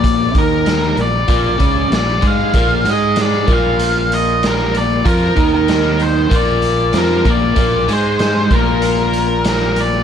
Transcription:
<<
  \new Staff \with { instrumentName = "Lead electric guitar" } { \time 4/4 \key bes \major \tempo 4 = 96 d''8 bes'4 d''4. d''8 f''8~ | f''8 ees''8 d''8 f''4 ees''8 bes'8 d''8 | bes'8. bes'16 bes'8 c''8 d''4 bes'8 d''8~ | d''8 c''4 bes'4. bes'8 d''8 | }
  \new Staff \with { instrumentName = "Overdriven electric guitar" } { \clef bass \time 4/4 \key bes \major <bes, bes>8 <ees ees'>4 bes,8 <bes, bes>8 <des des'>8 bes,8 <aes aes'>8 | <bes, bes>8 <aes aes'>4 <bes, bes>2~ <bes, bes>8 | <f f'>8 <ees ees'>4. <bes, bes>4 <f f'>8 <bes, bes>8 | <bes, bes>8 <aes aes'>4 <bes, bes>2~ <bes, bes>8 | }
  \new Staff \with { instrumentName = "Fingered electric bass" } { \clef bass \time 4/4 \key bes \major bes,,8 ees,4 bes,,8 bes,,8 des,8 bes,,8 aes,8 | bes,,8 aes,4 bes,,2~ bes,,8 | f,8 ees,4. bes,,4 f,8 bes,,8 | bes,,8 aes,4 bes,,2~ bes,,8 | }
  \new DrumStaff \with { instrumentName = "Drums" } \drummode { \time 4/4 <hh bd>8 <hh bd>8 <hh sn>8 hh8 <hh bd>8 <hh bd>8 <hh sn>8 <hh bd>8 | <hh bd>8 hh8 <hh sn>8 <hh bd>8 hh8 hh8 <hh sn>8 hh8 | <hh bd>8 <hh bd>8 <hh sn>8 hh8 <hh bd>8 hh8 <hh sn>8 <hh bd>8 | <hh bd>8 hh8 <hh sn>8 <hh bd>8 hh8 hh8 <hh sn>8 hh8 | }
>>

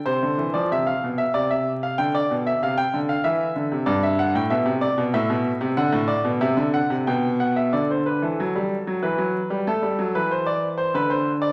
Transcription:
<<
  \new Staff \with { instrumentName = "Grand piano" } { \time 3/4 \key c \major \tempo 4 = 94 c''8. d''16 e''16 f''8 e''16 d''16 e''8 f''16 | g''16 d''8 e''16 f''16 g''8 f''16 e''4 | d''16 e''16 fis''16 g''16 e''8 d''8 e''4 | fis''8 d''8 e''8 fis''8 g''8 fis''16 e''16 |
d''16 c''16 b'16 a'4~ a'16 b'4 | a'8. b'16 c''16 d''8 c''16 b'16 c''8 d''16 | }
  \new Staff \with { instrumentName = "Grand piano" } { \clef bass \time 3/4 \key c \major c16 d16 e16 f16 c8 b,8 c4 | d8 b,8 c8 d8 e8 d16 c16 | g,8. a,16 b,16 c8 b,16 a,16 b,8 c16 | d16 a,8 b,16 c16 d8 c16 b,4 |
d8. e16 fis16 g8 fis16 e16 fis8 g16 | a16 g16 fis16 e4~ e16 d4 | }
>>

